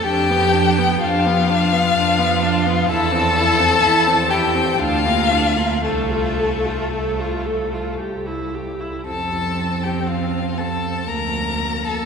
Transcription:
<<
  \new Staff \with { instrumentName = "Violin" } { \time 3/4 \key f \major \tempo 4 = 60 g''4 f''2 | a''4. g''8 f''4 | a'2 r4 | a''8. g''16 f''8 a''8 bes''8. a''16 | }
  \new Staff \with { instrumentName = "Violin" } { \time 3/4 \key f \major g'4 f'2 | a'4. g'8 f'4 | a2 r4 | a'8. g'16 f'8 a'8 bes'8. a'16 | }
  \new Staff \with { instrumentName = "Viola" } { \time 3/4 \key f \major d'16 b16 d'16 b16 d'16 b16 d'16 b16 d'16 b16 d'16 b16 | e'16 c'16 e'16 c'16 e'16 c'16 e'16 c'16 d'16 bes16 d'16 bes16 | a'16 f'16 a'16 f'16 a'16 f'16 a'16 f'16 g'16 e'16 g'16 e'16 | c'2 bes4 | }
  \new Staff \with { instrumentName = "Cello" } { \clef bass \time 3/4 \key f \major f,4 f,4 f,4 | e,4 e,4 d,4 | c,4 c,4 c,4 | f,2 d,4 | }
>>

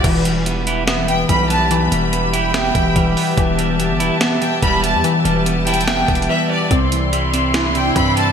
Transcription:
<<
  \new Staff \with { instrumentName = "Violin section" } { \time 4/4 \key e \minor \tempo 4 = 144 r2 r8 g''8 b''8 a''8 | r4. g''2~ g''8 | r2 r8 g''8 b''8 a''8 | r4. g''4. e''8 d''8 |
r2 r8 g''8 b''8 a''8 | }
  \new Staff \with { instrumentName = "String section" } { \time 4/4 \key e \minor << { b''1~ | b''1 | a''1~ | a''1 |
c'''1 | } \\ { <g' e''>1~ | <g' e''>1~ | <g' e''>1~ | <g' e''>1 |
<e' d''>1 | } >> }
  \new Staff \with { instrumentName = "Clean electric guitar" } { \clef bass \time 4/4 \key e \minor e8 g8 b8 e'8 e''8 e8 g8 b8 | e8 g8 b8 e'8 e''8 e8 g8 b8 | e8 g8 b8 e'8 e''8 e8 g8 b8 | e8 g8 b8 e'8 e''8 e8 g8 b8 |
c8 e8 g8 c'8 d'8 c8 e8 g8 | }
  \new Staff \with { instrumentName = "Synth keys" } { \clef bass \time 4/4 \key e \minor e2 b4 e4 | e2 b4 e4 | e2 b4 e4 | e2 b4 e4 |
c'2 e'4 c'4 | }
  \new Staff \with { instrumentName = "808-style bass" } { \clef bass \time 4/4 \key e \minor e,,2. b,,4~ | b,,8 e,,2 e,,8 e,,8 r8 | e,,4~ e,,16 g,,16 e,,16 r4 r16 e,,8. e,16 | r8 e,,2 e,,8 r4 |
c,2. g,4 | }
  \new DrumStaff \with { instrumentName = "Drums" } \drummode { \time 4/4 <cymc hh bd>8 hh8 hh8 hh8 <hh sn>8 hh8 <hh bd>8 hh8 | hh8 hh8 hh8 hh8 <hh sn>8 <hh bd>8 <hh bd>8 hho8 | <hh bd>8 hh8 hh8 hh8 <hh sn>8 hh8 <hh bd>8 hh8 | hh8 hh8 \tuplet 3/2 { hh16 r16 r16 hh16 hh16 hh16 <hh sn>16 r16 r16 <hh bd>16 hh16 hh16 } r4 |
<hh bd>8 hh8 hh8 hh8 <hh sn>8 hh8 <hh bd>8 hh8 | }
>>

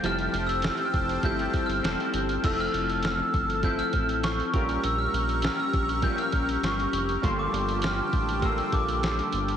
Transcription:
<<
  \new Staff \with { instrumentName = "Glockenspiel" } { \time 4/4 \key f \major \tempo 4 = 100 \tuplet 3/2 { f'''4 e'''8~ e'''8 f'''4 g'''4 f'''8~ } f'''8 r8 | e'''16 f'''8. f'''16 e'''8. g'''16 f'''8. des'''8. r16 | e'''16 f'''8. f'''16 e'''8. g'''16 f'''8. des'''8. r16 | c'''16 d'''8. f'''4 e'''8 d'''4 r8 | }
  \new Staff \with { instrumentName = "Analog synth pad" } { \time 4/4 \key f \major << { <c'' g'' a''>1 | a''2.~ a''8 <bes'' des'''>8~ | <bes'' des'''>1 | <g'' a''>1 | } \\ { g'1 | a'2.~ a'8 g'8~ | g'1~ | g'1 | } >> }
  \new Staff \with { instrumentName = "Synth keys" } { \time 4/4 \key f \major <f a e' g'>4. r8 <f a e' g'>4. r8 | <f c' e' a'>4. r8 <f c' e' a'>4. <g des' f' bes'>8~ | <g des' f' bes'>4 r4 <g des' f' bes'>4. r8 | <g bes f' a'>4. r8 <g bes f' bes'>4. r8 | }
  \new Staff \with { instrumentName = "Clean electric guitar" } { \time 4/4 \key f \major <f g c' e' a'>8 <c' e' a'>4. <g c' e' a'>4 <g c' e' a'>4 | <f a c' e' a'>2 <f a c' e' a'>8 <c' e' a'>4 <bes, f bes des' g' bes'>8~ | <bes, f bes des' g' bes'>4 <bes des' g' bes'>4 <bes, f bes des' g' bes'>8 <bes des' g' bes'>4. | <g, d f bes f' a'>2 <g, d f bes f' a'>2 | }
  \new Staff \with { instrumentName = "Analog synth bass" } { \clef bass \time 4/4 \key f \major f,,8 f,,8. r16 f,,8 g,,8 g,,16 g,,16 e,,16 r16 g,,8 | f,,8 f,,4 g,,4 a,,4 bes,,8 | bes,,8 bes,,8. r16 bes,,8. r16 bes,,8 g,,8 f,,8 | g,,8 g,,4 a,,4 bes,,4 g,,8 | }
  \new DrumStaff \with { instrumentName = "Drums" } \drummode { \time 4/4 hh16 hh16 hh16 hh16 <hh sn>16 hh16 <hh bd>16 hh16 <hh bd>16 hh16 <hh bd>16 hh16 <hh sn>16 hh16 hh16 hh16 | <cymc hh bd>8 hh16 hh16 <hh sn>8 <hh bd>16 hh16 <hh bd>16 hh16 <hh bd>16 hh16 <hh sn>16 hh16 <hh bd>16 hh16 | hh8 hh16 hh16 <hh sn>8 <hh bd>16 hh16 <hh bd>16 hh16 <hh bd>16 hh16 <hh sn>16 hh16 hh16 hh16 | <hh bd>8 hh16 hh16 <hh sn>8 <hh bd>16 hh16 <hh bd>16 hh16 <hh bd>16 hh16 <hh sn>16 hh16 hh16 hh16 | }
>>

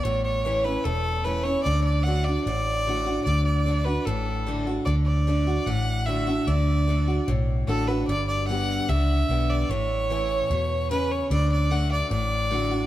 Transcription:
<<
  \new Staff \with { instrumentName = "Fiddle" } { \time 4/4 \key d \major \tempo 4 = 149 cis''8 cis''4 b'8 a'4 b'8 cis''8 | d''8 d''8 fis''8 d''8 d''2 | d''8 d''4 b'8 a'4. r8 | d''8 d''4. fis''4 e''4 |
d''2 r4 a'8 b'8 | d''8 d''8 fis''4 e''4. d''8 | cis''2. b'8 cis''8 | d''8 d''8 fis''8 d''8 d''2 | }
  \new Staff \with { instrumentName = "Steel-string acoustic guitar" } { \time 4/4 \key d \major << { r4 <e a cis' e'>8 <cis' e'>8 r4 <e a cis' e'>8 <cis' e'>8 | r4 <d a d' fis'>8 <d' fis'>8 r4 <d a d' fis'>8 <d' fis'>8 | r4 <d a d' fis'>8 <d' fis'>8 r4 <d a d' fis'>8 <d' fis'>8 | r4 <d a d' fis'>8 <d' fis'>8 r4 <d a d' fis'>8 <d' fis'>8 |
r4 <d a d' fis'>8 <d' fis'>8 r4 <d a d' fis'>8 <d' fis'>8 | r4 <d g b g'>4 r4 <d g b g'>4 | r4 <e a cis' e'>4 r2 | r4 <d a d' fis'>4 r4 <d a d' fis'>8 <d' fis'>8 | } \\ { a,2 e,2 | d2 a,2 | r2 a,2 | d2 a,2 |
d2 a,2 | g,2 d2 | a,2 b,4 cis4 | d2 a,2 | } >> }
  \new Staff \with { instrumentName = "Fingered electric bass" } { \clef bass \time 4/4 \key d \major a,,2 e,,2 | d,2 a,,2 | d,2 a,,2 | d,2 a,,2 |
d,2 b,,4 a,,4 | g,,2 cis,4 b,,4 | a,,2 e,2 | d,2 a,,2 | }
>>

